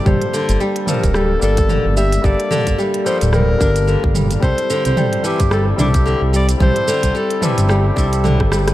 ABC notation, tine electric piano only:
X:1
M:4/4
L:1/8
Q:"Swing 16ths" 1/4=110
K:Gdor
V:1 name="Tine electric piano"
[G,B,DA]3 [G,B,DA]2 [G,B,DA]3 | [G,B,DA]3 [G,B,DA]2 [G,B,DB]3 | [G,CEA]3 [G,CEA]2 [G,CEA]3 | [G,CEA]3 [G,CEA]2 [G,CEA]3 |]